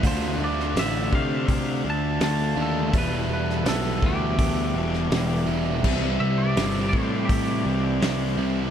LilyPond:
<<
  \new Staff \with { instrumentName = "Clean electric guitar" } { \time 4/4 \key c \major \tempo 4 = 83 c''8 d''8 e''8 f''4 a''8 a''8 a'8 | b'8 b'8 a'8 g'2 r8 | r8 e''16 d''8. c''8 g'4. r8 | }
  \new Staff \with { instrumentName = "Distorted electric guitar" } { \clef bass \time 4/4 \key c \major <d a d'>8 <a d'>8 <d a d'>8 <a d'>4 <a d'>8 <d a d'>4 | <e, b, e>8 <b, e>8 <e, b, e>8 <b, e>4 <b, e>8 <e, b, e>4 | <c g c'>8 <g c'>8 <c g c'>8 <g c'>4 <g c'>8 <c g c'>4 | }
  \new Staff \with { instrumentName = "Overdriven electric guitar" } { \clef bass \time 4/4 \key c \major <d a d' f'>2.~ <d a d' f'>8 <d a d' f'>8 | <e, b, e g b e'>2.~ <e, b, e g b e'>8 <e, b, e g b e'>8 | <c e g c' e'>2.~ <c e g c' e'>8 <c e g c' e'>8 | }
  \new Staff \with { instrumentName = "Picked electric bass" } { \clef bass \time 4/4 \key c \major d,8 d,8 a,,8 c8 c8 d,8 d,8 ees,8 | e,,8 e,,8 b,,8 d,8 d,8 e,,8 e,,8 e,,8 | c,8 c,8 g,,8 a,8 a,8 c,8 c,8 c,8 | }
  \new DrumStaff \with { instrumentName = "Drums" } \drummode { \time 4/4 <hho bd>8. sn16 <hho sn>8 bd8 <hho bd>4 <hho sn>4 | <hho bd>8. sn16 <hho sn>8 bd8 <hho bd>8. sn16 <hho sn>4 | <cymc bd>4 <hho sn>8 bd8 <hho bd>4 <hho sn>4 | }
>>